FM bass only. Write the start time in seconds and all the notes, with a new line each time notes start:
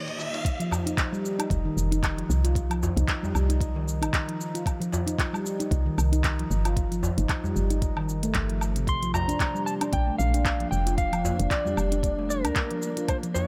1.50 F1
1.77 F1
2.29 C2
2.97 C2
3.35 C2
4.02 A1
5.71 C2
5.98 C2
6.50 G1
7.18 G1
7.56 G1
8.35 G1
8.87 A#1
9.93 A#1
10.19 A#1
10.72 F1
11.40 F1
11.77 F1
12.44 D2